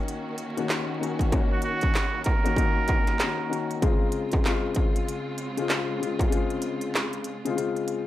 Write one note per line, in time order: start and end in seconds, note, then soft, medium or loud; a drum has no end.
0.00 0.46 D#3 medium
0.00 3.79 D#3 medium
0.00 0.46 A#3 medium
0.00 3.79 A#3 medium
0.00 0.47 C#4 loud
0.00 3.79 C#4 medium
0.00 0.47 F#4 loud
0.00 3.79 F#4 medium
0.08 closed hi-hat loud
0.38 closed hi-hat medium
0.57 0.98 D#3 medium
0.57 0.98 A#3 medium
0.57 0.98 C#4 medium
0.57 0.99 F#4 loud
0.57 closed hi-hat medium
0.69 snare loud
0.69 clap medium
0.69 closed hi-hat medium
0.99 1.29 D#3 medium
0.99 1.30 A#3 medium
0.99 1.30 C#4 medium
0.99 1.30 F#4 medium
0.99 closed hi-hat medium
1.19 kick medium
1.19 closed hi-hat medium
1.32 2.34 D#3 medium
1.32 2.35 A#3 medium
1.32 2.35 C#4 loud
1.32 2.35 F#4 loud
1.32 kick loud
1.32 closed hi-hat medium
1.52 1.63 F#4 medium
1.62 2.22 F#4 medium
1.62 closed hi-hat medium
1.81 kick loud
1.81 closed hi-hat medium
1.95 snare loud
1.95 clap loud
1.95 closed hi-hat medium
2.24 3.78 A#4 medium
2.24 kick loud
2.24 closed hi-hat medium
2.44 2.56 D#3 medium
2.44 2.56 A#3 medium
2.44 2.57 C#4 medium
2.44 2.57 F#4 loud
2.44 closed hi-hat medium
2.56 3.16 D#3 loud
2.56 3.16 A#3 medium
2.56 3.16 C#4 medium
2.56 3.17 F#4 loud
2.56 kick loud
2.56 closed hi-hat loud
2.88 kick loud
2.88 closed hi-hat medium
3.07 snare soft
3.07 closed hi-hat medium
3.19 3.48 D#3 medium
3.19 3.48 A#3 medium
3.19 3.49 C#4 medium
3.19 3.50 F#4 medium
3.19 snare loud
3.19 clap medium
3.19 closed hi-hat medium
3.49 3.79 D#3 medium
3.49 3.80 A#3 medium
3.49 3.80 C#4 medium
3.49 3.80 F#4 medium
3.49 closed hi-hat medium
3.71 closed hi-hat medium
3.82 8.07 C#3 medium
3.82 4.41 C#3 medium
3.82 8.07 G#3 medium
3.82 4.41 G#3 medium
3.82 8.07 C4 medium
3.82 4.41 C4 medium
3.82 8.07 F4 medium
3.82 4.42 F4 loud
3.82 kick loud
3.82 closed hi-hat medium
4.12 closed hi-hat medium
4.32 kick loud
4.32 closed hi-hat medium
4.44 5.46 C#3 medium
4.44 5.46 G#3 medium
4.44 5.47 C4 medium
4.44 5.47 F4 loud
4.44 snare loud
4.44 clap loud
4.44 closed hi-hat medium
4.75 kick loud
4.75 closed hi-hat medium
4.96 closed hi-hat medium
5.08 closed hi-hat loud
5.38 closed hi-hat medium
5.57 5.98 C#3 medium
5.57 5.98 G#3 medium
5.57 5.98 C4 medium
5.57 5.99 F4 loud
5.57 closed hi-hat medium
5.69 snare loud
5.69 clap medium
5.69 closed hi-hat medium
6.00 6.29 C#3 medium
6.00 6.29 G#3 medium
6.00 6.30 C4 medium
6.00 6.30 F4 medium
6.00 closed hi-hat medium
6.19 kick medium
6.19 closed hi-hat medium
6.30 7.33 C#3 loud
6.30 7.33 G#3 medium
6.30 7.34 C4 medium
6.30 7.34 F4 loud
6.30 closed hi-hat medium
6.50 closed hi-hat soft
6.62 closed hi-hat medium
6.81 closed hi-hat medium
6.95 snare loud
6.95 clap loud
6.95 closed hi-hat medium
7.13 closed hi-hat soft
7.24 closed hi-hat medium
7.45 7.54 C#3 medium
7.45 7.55 G#3 medium
7.45 7.55 C4 medium
7.45 7.56 F4 loud
7.45 closed hi-hat medium
7.55 8.07 C#3 medium
7.55 8.07 G#3 medium
7.55 8.07 C4 medium
7.55 8.07 F4 loud
7.55 closed hi-hat loud
7.76 closed hi-hat soft
7.88 closed hi-hat medium